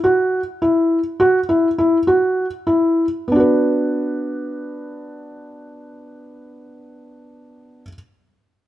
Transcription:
0.04 F#4
0.62 E4
1.20 F#4
1.49 E4
1.78 E4
2.07 F#4
2.67 E4
3.28 B3
3.32 D4 F#4
3.40 B4

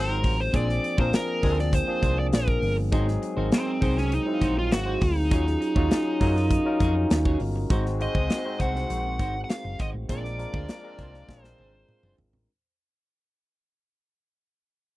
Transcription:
Already playing: G#1 F#3 G#3 C4 D#4 F4 G#4 A#4 C5
0.08 D#4 F#4 C5
0.23 A1 D#4 F#4 C5, kick, open hi-hat
0.38 C5, muted clean electric guitar stroke
0.53 A#1 F3 A#3 C4 D4 G#4 C5 D5, kick, closed hi-hat
0.68 muted clean electric guitar stroke, snare
0.83 muted clean electric guitar stroke, closed hi-hat
0.97 A#1 F3 A#3 C4 D4 G#4 A#4 C5, kick
1.13 A#4, snare, closed hi-hat
1.28 muted clean electric guitar stroke
1.42 D2 F3 G#3 A#3 C4 D4 G#4 C5, kick, open hi-hat
1.58 D5, muted clean electric guitar stroke, snare
1.73 C5, kick, closed hi-hat
1.87 F3 A#3 C4 D4 G#4, muted clean electric guitar stroke
2.02 C2 D4 G#4 C5, kick, closed hi-hat
2.17 D5, muted clean electric guitar stroke
2.32 A#1 A#4, muted clean electric guitar stroke, snare, closed hi-hat
2.47 muted clean electric guitar stroke, kick
2.62 G1, open hi-hat
2.77 muted clean electric guitar stroke
2.92 G#1 F#3 G#3 C4 D#4 F#4 G#4 C5, kick, closed hi-hat
3.07 muted clean electric guitar stroke, snare
3.22 muted clean electric guitar stroke, closed hi-hat
3.36 G#1 F#3 G#3 C4 D#4 F#4 A#4 C5
3.52 C4, muted clean electric guitar stroke, snare, closed hi-hat
3.67 muted clean electric guitar stroke
3.81 C2 F#3 G#3 C4 D#4 F#4 G#4 C5, kick, open hi-hat
3.96 C#4, muted clean electric guitar stroke, snare
4.12 D#4, closed hi-hat
4.26 F#3 G#3 C4 D#4 E4, muted clean electric guitar stroke
4.34 F5
4.41 A#1 D#4 F#4 C5, kick, closed hi-hat
4.56 F4, muted clean electric guitar stroke
4.71 G#1 F#4, muted clean electric guitar stroke, snare, closed hi-hat
4.86 D#4 F#4 C5
5.01 D2 D#4, muted clean electric guitar stroke, kick, open hi-hat
5.16 muted clean electric guitar stroke
5.31 D#2 F#3 C#4 D#4 F4 F#4 G#4 C#5, kick, closed hi-hat
5.47 muted clean electric guitar stroke, snare
5.61 muted clean electric guitar stroke, closed hi-hat
5.75 D#2 F#3 C#4 D#4 F4 F#4 G#4 C#5, kick
5.91 muted clean electric guitar stroke, snare, closed hi-hat
6.06 muted clean electric guitar stroke
6.20 F#2 F#3 C#4 D#4 F4 F#4 G#4 A#4 C#5, kick, open hi-hat
6.36 muted clean electric guitar stroke, snare
6.51 kick, closed hi-hat
6.65 C#4 D#4 F4 F#4 A#4, muted clean electric guitar stroke
6.80 F2 F#4 G#4 C#5, kick, closed hi-hat
6.95 muted clean electric guitar stroke
7.10 D#2, muted clean electric guitar stroke, snare, closed hi-hat
7.25 F#4 G#4 C#5, kick
7.40 G1, muted clean electric guitar stroke, open hi-hat
7.56 muted clean electric guitar stroke
7.70 G#1 G#3 C4 D#4 F#4 C5, kick, closed hi-hat
7.85 muted clean electric guitar stroke, snare
8.00 G#3 C4 D#4 F#4 C5 D#5, muted clean electric guitar stroke, closed hi-hat
8.15 C#2 D#4 F#4 C5, kick
8.30 snare, closed hi-hat
8.45 G#3 C4 D#4 F#4 C5, muted clean electric guitar stroke
8.60 C2 D#4 F#4 C5 F#5, kick, closed hi-hat
8.75 muted clean electric guitar stroke, snare
8.90 A#1 G#3 C4 D#4 F#4 A#4, closed hi-hat
8.97 C5
9.05 muted clean electric guitar stroke
9.19 G#1 D#4 F#4 C5, kick, closed hi-hat
9.35 muted clean electric guitar stroke
9.44 F#5
9.50 F5, snare, closed hi-hat
9.64 F#1, muted clean electric guitar stroke
9.79 G#1 D#4 F#4 C5 D#5, kick, closed hi-hat
9.94 A1, muted clean electric guitar stroke
10.09 A#1 F3 G#3 A#3 C4 D4 F4 G#4 A#4 C5 D5, kick, closed hi-hat
10.24 muted clean electric guitar stroke, snare
10.38 G#3 C4 D4 F4 A#4, muted clean electric guitar stroke, closed hi-hat
10.53 D2 D4 G#4 C5, kick
10.69 snare, closed hi-hat
10.83 G#3 C4 D4 F4 A#4, muted clean electric guitar stroke
10.98 C2 D4 G#4 C5, kick, closed hi-hat
11.14 muted clean electric guitar stroke, snare
11.28 A#1 G#3 C4 D4 F4 G#4, kick, snare
11.36 A#4
11.43 C5, muted clean electric guitar stroke, snare
11.58 G#1 D4 G#4 C5, high tom
11.74 muted clean electric guitar stroke
11.89 muted clean electric guitar stroke, mid tom
12.03 F#1 D4 G#4 C5, mid tom
12.18 G#1, muted clean electric guitar stroke, floor tom
12.33 A1, muted clean electric guitar stroke, floor tom

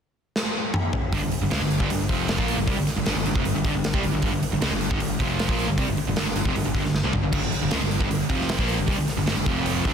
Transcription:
0.36 snare
0.74 mid tom
0.93 floor tom
1.12 G1 G2 D3, kick, open hi-hat
1.21 G1 G2 D3
1.31 muted picked electric bass stroke, muted distorted electric guitar stroke, open hi-hat
1.42 G1 G2 D3
1.51 C#2 C#3 G#3, snare, open hi-hat
1.60 G1 G2 D3
1.71 open hi-hat
1.80 G1 G2 D3, kick
1.89 G1 G2 D3, open hi-hat
2.09 F1 F2 C3 F3, kick, open hi-hat
2.29 snare, open hi-hat
2.38 A#1 A#2 F3 A#3, kick
2.48 open hi-hat
2.56 G1 G2 D3
2.67 C2 C3 G3, kick, open hi-hat
2.76 G1 G2 D3
2.87 muted picked electric bass stroke, muted distorted electric guitar stroke, snare, open hi-hat
2.96 G1 G2 D3
3.06 G1 G2 D3, snare, open hi-hat
3.16 G1 G2 D3
3.26 G1 G2 D3, open hi-hat
3.35 F1 F2 C3, kick
3.45 G1 G2 D3, open hi-hat
3.54 G1 G2 D3
3.64 G1 G2 D3, kick, open hi-hat
3.74 G1 G2 D3
3.84 snare, open hi-hat
3.94 C2 C3 G3, kick
4.03 G1 G2 D3, open hi-hat
4.14 G1 G2 D3
4.22 G1 G2 D3, kick, open hi-hat
4.32 G1 G2 D3
4.42 muted picked electric bass stroke, muted distorted electric guitar stroke, open hi-hat
4.51 G1 G2 D3
4.61 C#2 C#3 G#3, snare, open hi-hat
4.71 G1 G2 D3
4.81 open hi-hat
4.91 G1 G2 D3, kick
5.00 G1 G2 D3, open hi-hat
5.20 F1 F2 C3 F3, kick, open hi-hat
5.39 snare, open hi-hat
5.49 A#1 A#2 F3 A#3, kick
5.59 open hi-hat
5.68 G1 G2 D3
5.78 C2 C3 G3, kick, open hi-hat
5.88 G1 G2 D3
5.97 muted picked electric bass stroke, muted distorted electric guitar stroke, open hi-hat
6.07 G1 G2 D3
6.16 G1 G2 D3, snare, open hi-hat
6.26 G1 G2 D3
6.36 G1 G2 D3, open hi-hat
6.45 F1 F2 C3, kick
6.55 G1 G2 D3, open hi-hat
6.65 G1 G2 D3
6.74 G1 G2 D3, kick, open hi-hat
6.84 G1 G2 D3, snare
6.95 snare
7.04 C2 C3 G3
7.13 G1 G2 D3, floor tom
7.23 G1 G2 D3
7.33 G1 G2 D3, kick, crash
7.43 G1 G2 D3
7.52 muted picked electric bass stroke, muted distorted electric guitar stroke, open hi-hat
7.62 G1 G2 D3
7.71 C#2 C#3 G#3, snare, open hi-hat
7.81 G1 G2 D3
7.91 open hi-hat
8.00 G1 G2 D3, kick
8.10 G1 G2 D3, open hi-hat
8.29 F1 F2 C3 F3, kick, open hi-hat
8.40 snare
8.49 snare, open hi-hat
8.58 A#1 A#2 F3 A#3, kick
8.68 open hi-hat
8.79 G1 G2 D3
8.88 C2 C3 G3, kick, open hi-hat
8.98 G1 G2 D3
9.07 muted distorted electric guitar stroke, muted picked electric bass stroke, snare, open hi-hat
9.17 G1 G2 D3
9.26 G1 G2 D3, snare, open hi-hat
9.37 G1 G2 D3
9.46 F1 F2 C3 F3, kick, open hi-hat
9.66 open hi-hat
9.85 D2 D3 A3 D4, kick, open hi-hat

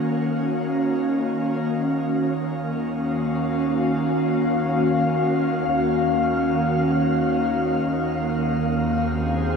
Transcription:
Already playing: D#3 A#3 C#4 F#4 F5
2.10 D#2 D#3
2.32 C#4
2.38 A#3
2.77 F5
2.85 F#4
7.86 D#2
8.55 C4
8.94 G#4
9.07 C5
9.38 F4

